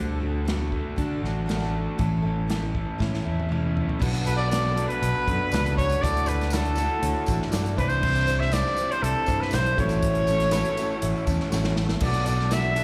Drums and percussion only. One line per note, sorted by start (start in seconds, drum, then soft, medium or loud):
0.48 snare loud
0.48 closed hi-hat medium
0.72 kick medium
0.98 kick loud
0.98 closed hi-hat medium
1.25 snare soft
1.49 snare medium
1.49 closed hi-hat medium
1.62 snare soft
1.99 kick medium
1.99 closed hi-hat medium
2.50 snare medium
2.50 closed hi-hat medium
2.75 kick medium
3.00 kick medium
3.00 snare medium
3.14 snare soft
3.40 high tom medium
3.52 mid tom medium
3.77 floor tom medium
3.89 floor tom medium
4.02 kick loud
4.02 crash loud
4.13 closed hi-hat soft
4.13 tambourine soft
4.25 closed hi-hat medium
4.25 tambourine medium
4.51 snare loud
4.51 closed hi-hat loud
4.51 tambourine medium
4.63 snare soft
4.63 tambourine soft
4.77 closed hi-hat medium
4.90 closed hi-hat soft
5.03 closed hi-hat medium
5.14 tambourine soft
5.28 kick loud
5.28 closed hi-hat medium
5.52 snare loud
5.52 closed hi-hat medium
5.52 tambourine loud
5.64 closed hi-hat soft
5.64 tambourine soft
5.78 kick medium
5.78 closed hi-hat medium
5.89 closed hi-hat soft
5.89 tambourine medium
6.04 kick loud
6.04 closed hi-hat loud
6.14 closed hi-hat soft
6.14 tambourine soft
6.26 closed hi-hat medium
6.26 tambourine medium
6.41 snare soft
6.41 closed hi-hat soft
6.50 snare loud
6.50 closed hi-hat loud
6.50 tambourine loud
6.64 closed hi-hat soft
6.64 tambourine soft
6.75 closed hi-hat medium
6.75 tambourine medium
7.03 closed hi-hat loud
7.14 tambourine soft
7.26 kick medium
7.26 closed hi-hat medium
7.26 tambourine medium
7.42 snare soft
7.52 snare loud
7.52 closed hi-hat loud
7.52 tambourine loud
7.65 closed hi-hat soft
7.65 tambourine soft
7.78 kick medium
7.78 closed hi-hat medium
7.90 tambourine medium
8.03 kick loud
8.03 crash loud
8.14 closed hi-hat soft
8.14 tambourine soft
8.27 closed hi-hat medium
8.27 tambourine medium
8.42 snare soft
8.52 snare loud
8.52 closed hi-hat loud
8.52 tambourine medium
8.64 snare soft
8.64 tambourine soft
8.76 closed hi-hat medium
8.76 tambourine medium
8.92 closed hi-hat soft
9.04 closed hi-hat medium
9.14 tambourine soft
9.26 kick medium
9.26 closed hi-hat medium
9.26 tambourine medium
9.42 snare soft
9.51 snare loud
9.51 closed hi-hat loud
9.51 tambourine loud
9.64 closed hi-hat soft
9.64 tambourine soft
9.78 kick medium
9.78 closed hi-hat medium
9.89 closed hi-hat soft
9.89 tambourine medium
10.03 kick loud
10.03 closed hi-hat loud
10.15 closed hi-hat soft
10.27 closed hi-hat medium
10.27 tambourine medium
10.40 snare soft
10.40 closed hi-hat soft
10.51 snare loud
10.51 closed hi-hat loud
10.51 tambourine loud
10.65 closed hi-hat soft
10.65 tambourine soft
10.77 closed hi-hat medium
10.77 tambourine medium
10.90 tambourine soft
11.02 closed hi-hat loud
11.02 tambourine soft
11.16 tambourine soft
11.27 kick medium
11.27 closed hi-hat medium
11.27 tambourine medium
11.40 snare soft
11.52 snare medium
11.52 tambourine loud
11.64 snare medium
11.76 snare medium
11.89 snare medium
12.00 kick loud
12.00 crash loud
12.14 closed hi-hat soft
12.14 tambourine soft
12.26 closed hi-hat medium
12.26 tambourine medium
12.40 snare soft
12.51 snare loud
12.51 closed hi-hat medium
12.51 tambourine loud
12.64 tambourine soft
12.76 closed hi-hat medium
12.76 tambourine medium